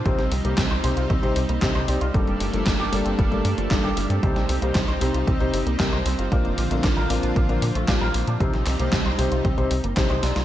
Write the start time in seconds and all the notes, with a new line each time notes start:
Already playing: C4
0.05 C2 C3 G3 C4 D#4 G4 C5, kick, closed hi-hat
0.19 A#1 C4, snare, closed hi-hat
0.31 C2 C4, open hi-hat
0.45 C2 C3 A#3 C4 D#4 G4 C5, closed hi-hat
0.58 C2 C4, kick, snare, clap, closed hi-hat
0.71 C2 C5, closed hi-hat
0.84 C2 C3 C4 D#4 G4 C5, open hi-hat
0.97 C2 F4, closed hi-hat
1.10 C2 C4, kick, closed hi-hat
1.23 A#1 C3 C4 D#4 G4 C5, closed hi-hat
1.36 C2 C4, open hi-hat
1.49 C2 A#3, closed hi-hat
1.62 C2 C3 C4 D#4 G4 C5, kick, snare, clap, closed hi-hat
1.75 C2 C3 C4 D#4 G4 C5 D#5, closed hi-hat
1.88 C2 C4 D#4 G4 D5, open hi-hat
2.01 C2 F4, closed hi-hat
2.14 G1 G2 G3 A3 A#3 D4 G4 A4, kick, closed hi-hat
2.27 F1 G3, closed hi-hat
2.40 G1 G3, open hi-hat
2.53 G1 G2 F3 A#3 D4 G4 A4, closed hi-hat
2.66 G1 G3, kick, snare, clap, closed hi-hat
2.79 G1 G4, closed hi-hat
2.92 G1 G2 G3 A#3 D4 G4 A4, open hi-hat
3.05 G1 C4, closed hi-hat
3.18 G1 G3, kick, closed hi-hat
3.32 G1 G2 G3 A#3 D4 G4 A4, closed hi-hat
3.45 G2 G3, open hi-hat
3.58 G1 F3, closed hi-hat
3.71 G1 G2 G3 A#3 D4 G4 A4, kick, snare, clap, closed hi-hat
3.84 G1 G4, closed hi-hat
3.97 G1 G3, open hi-hat
4.10 G2 C4, closed hi-hat
4.23 C2 C3 C4 D#4 G4 C5, kick, closed hi-hat
4.36 A#1 C4, snare, closed hi-hat
4.49 C2 C4, open hi-hat
4.62 C2 C3 A#3 C4 D#4 G4 C5, closed hi-hat
4.75 C2 C4, kick, snare, clap, closed hi-hat
4.88 C2 C5, closed hi-hat
5.01 C2 C3 C4 D#4 G4 C5, open hi-hat
5.14 C2 F4, closed hi-hat
5.27 C2 C4, kick, closed hi-hat
5.40 C2 C3 C4 D#4 G4 C5, closed hi-hat
5.53 G1 C4, open hi-hat
5.66 C2 A#3, closed hi-hat
5.79 C2 C3 C4 D#4 G4 A#4, kick, snare, clap, closed hi-hat
5.92 C2 C5, closed hi-hat
6.06 C2 C4, open hi-hat
6.19 G1 F4, closed hi-hat
6.32 A#1 A#2 D3 F3 A#3 C4 D4 F4 A#4, kick, closed hi-hat
6.45 F1 A#3, closed hi-hat
6.58 A#1 A#3, open hi-hat
6.71 A#1 A#2 A3 C4 D4 F4 A#4, closed hi-hat
6.84 A#1 A#3, kick, snare, clap, closed hi-hat
6.97 A#1 A#4, closed hi-hat
7.10 A#1 A#2 A#3 C4 D4 F4 A#4, open hi-hat
7.23 A#1 D4, closed hi-hat
7.36 A#1 A#3, kick, closed hi-hat
7.49 A#1 A#2 A#3 C4 D4 F4 A#4, closed hi-hat
7.62 A#2 A#3, open hi-hat
7.75 A#1 A3, closed hi-hat
7.88 A#1 A#2 A#3 C4 D4 F4 G4, kick, snare, clap, closed hi-hat
8.01 A#1 A#4, closed hi-hat
8.14 A#1 A#3, open hi-hat
8.27 A#2 D4, closed hi-hat
8.40 C2 C3 G3 C4 D#4 G4 C5, kick, closed hi-hat
8.53 A#1 C4, snare, closed hi-hat
8.66 C2 C4, clap, open hi-hat
8.79 C2 C3 A#3 C4 D#4 G4 C5, closed hi-hat
8.93 C2 C4, kick, snare, clap, closed hi-hat
9.06 C2 C5, closed hi-hat
9.18 C2 C3 C4 D#4 G4 C5, open hi-hat
9.32 C2 F4, closed hi-hat
9.45 C2 C4, kick, closed hi-hat
9.58 C2 C3 C4 D#4 G4 C5, closed hi-hat
9.71 C2 C4, open hi-hat
9.84 G1 A#3, closed hi-hat
9.97 A#1 C3 C4 D#4 G4 C5, kick, snare, clap, closed hi-hat
10.10 C2 C3 C4 D#4 G4 C5 D#5, closed hi-hat
10.23 C2 C4 D#4 G4 D5, snare, open hi-hat
10.36 C2 F4, snare, open hi-hat